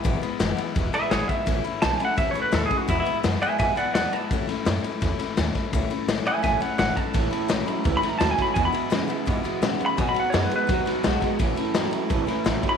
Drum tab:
RD |xxxxxxxx|xxxxxxxx|xxxxxxxx|xxxxxxxx|
SD |--o---o-|--o---o-|--o---o-|-oo-oooo|
BD |o---o--o|o---o--o|o---o---|o---o--o|

RD |xxxxxxxx|xxxxxxxx|xxxxxxxx|xxxxxxxx|
SD |--o-o-o-|--o--ooo|--o---o-|--o-oooo|
BD |o---o--o|o---o--o|o---o---|o---o--o|

RD |xxxxxxxx|
SD |--o--oo-|
BD |o---o--o|